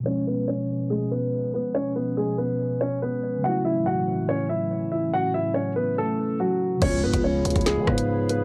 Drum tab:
CC |--------------------------------|--------------------------------|--------------------------------|--------------------------------|
HH |--------------------------------|--------------------------------|--------------------------------|--------------------------------|
SD |--------------------------------|--------------------------------|--------------------------------|--------------------------------|
BD |--------------------------------|--------------------------------|--------------------------------|--------------------------------|

CC |x-------------------------------|
HH |x-----x-----xxxxx-----x-----x---|
SD |----------------o---r-----------|
BD |o-----o-------o-----o-----------|